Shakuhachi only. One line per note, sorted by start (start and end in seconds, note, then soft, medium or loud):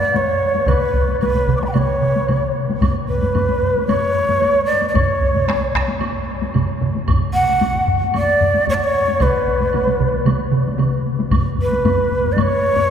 0.00 0.18 D5 loud
0.16 0.70 C#5 medium
0.68 1.20 B4 medium
1.20 1.57 B4 medium
1.57 1.64 C#6 soft
1.57 1.60 D6 soft
1.63 1.65 D5 medium
1.63 1.68 G5 soft
1.63 1.66 B5 soft
1.68 1.76 D5 medium
1.68 1.71 F#5 soft
1.75 2.55 C#5 medium
3.09 3.85 B4 medium
3.87 4.64 C#5 medium
4.66 4.86 D5 medium
4.89 4.97 D5 medium
4.96 5.76 C#5 medium
7.34 7.84 F#5 loud
8.17 8.65 D5 medium
8.70 8.76 C#5 medium
8.74 8.85 D5 medium
8.84 9.24 C#5 medium
9.22 10.28 B4 medium
11.62 12.34 B4 medium
12.32 12.42 D5 medium
12.41 12.90 C#5 loud